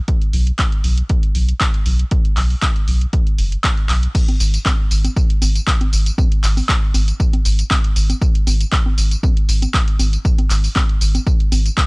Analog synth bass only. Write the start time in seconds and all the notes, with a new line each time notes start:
0.34 B1
0.84 B1
1.35 B1
1.86 B1
2.37 B1
2.88 B1
3.39 F#1
3.90 B1
4.40 G#1
4.91 G#1
5.42 G#1
5.93 G#1
6.44 G#1
6.95 G#1
7.46 G#1
7.96 G#1
8.47 G#1
8.98 G#1
9.49 G#1
10.00 G#1
10.50 G#1
11.01 G#1
11.52 G#1